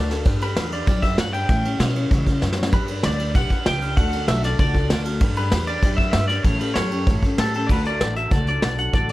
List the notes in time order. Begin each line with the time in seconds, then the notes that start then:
Already playing: D2 A3 D4 F#4
0.10 D4 F#4 A4, snare, ride
0.25 G2 G3 D4 G4 B4, kick, ride
0.40 D4 G4 B4, ride
0.55 E2 G3 D4 G4 B4, snare, ride
0.72 D4 G4 B4 D5, ride
0.87 F#2 G3 D4 G4 B4, kick, snare, ride
1.02 D4 G4 B4 E5, kick, ride
1.18 G2 G3 D4 G4 B4 F#5, snare, ride
1.33 D4 G4 B4 G5, ride
1.49 A2 E3 G3 C#4 E4 C#5, kick, snare, ride
1.65 G3 C#4 E4 C#5, ride
1.79 B2 G3 C#4 E4 C#5, snare, ride
1.96 G3 C#4 E4 C#5, ride
2.11 A2 C#3 E3 G3 C#4 E4 C#5, kick, ride
2.27 G3 C#4 E4 C#5, kick, ride
2.42 F#2 G3 C#4 E4, snare
2.46 C#5
2.52 snare
2.57 G3 C#4 E4 C#5
2.63 snare
2.72 G2 G3 D4 G4 B4, kick, snare, ride
2.88 D4 G4 B4, ride
3.03 D2 G3 D4 G4 B4 D5, snare, ride
3.18 D4 G4 B4, ride
3.35 B1 G3 D4 G4 B4 F#5, kick, snare, ride
3.50 D4 G4 B4, kick, ride
3.66 C#2 G3 D4 G4 B4 G5, snare, ride
3.82 D4 G4 B4, ride
3.97 D2 D3 A3 D4 F#4 A4 F#5, kick, snare, ride
4.13 D4 F#4 A4, ride
4.28 B1 A3 D4 F#4 A4 E5, snare, ride
4.43 D4 F#4 A4 D5, snare, ride
4.59 C#2 D3 A3 D4 F#4 A4 D5, kick, snare, ride
4.74 D4 F#4 A4, kick, ride
4.90 D2 A3 D4 F#4, snare, ride
5.05 D4 F#4 A4, ride
5.21 G2 G3 D4 G4 B4, kick, ride
5.36 D4 G4 B4, ride
5.51 E2 G3 D4 G4 B4, snare, ride
5.67 D4 G4 B4 D5, ride
5.83 F#2 G3 D4 G4 B4, kick, snare, ride
5.97 G4 B4 E5, kick, ride
6.01 D4
6.11 G2 G3 D4 E5, snare, ride
6.16 G4 B4
6.28 G4 B4 D5, snare, ride
6.33 D4
6.43 A2 E3 G3 C#4 G4 A4 C#5, kick, ride
6.59 G3 C#4 G4 A4 B4, ride
6.74 F#2 G3 C#4 C#5, snare, ride
6.78 G4 A4
6.91 G3 C#4 G4 A4, ride
7.07 G2 A2 E3 G3 C#4 G4 A4, kick, ride
7.23 G3 C#4 G4 A4, kick, ride
7.38 A2 G3 C#4 G4 A4, snare, ride
7.42 A4
7.54 G3 C#4 G4 A4, ride
7.67 D2 D3 A3 D4 D5, kick, crash
7.71 F#4 A4 B4
7.85 D4 F#4 A4 D5, closed hi-hat
8.01 A1 A3 D4 F#4 A4, snare, closed hi-hat
8.15 D4 F#4 A4 E5, closed hi-hat
8.31 C#2 D3 A3 D4 F#4 A4 D5, kick, closed hi-hat
8.47 D4 F#4 A4 D5, closed hi-hat
8.62 B1 A3 D4 F#4 A4, snare, closed hi-hat
8.78 D4 F#4 A4 F#5, closed hi-hat
8.93 A1 D3 A3 D4 F#4 A4 D5, kick, closed hi-hat
9.09 closed hi-hat